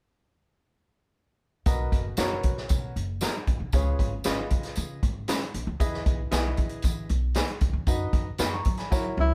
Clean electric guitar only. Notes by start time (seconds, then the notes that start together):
2.18 F#3 B3 D#4 A#4
3.21 F#3 B3 D#4 A#4
4.25 G#3 C#4 F4 B4
5.28 G#3 C#4 F4 B4
6.32 B3 D#4 G#4 B4
7.35 B3 D#4 G#4 B4
8.39 B3 D#4 F#4 B4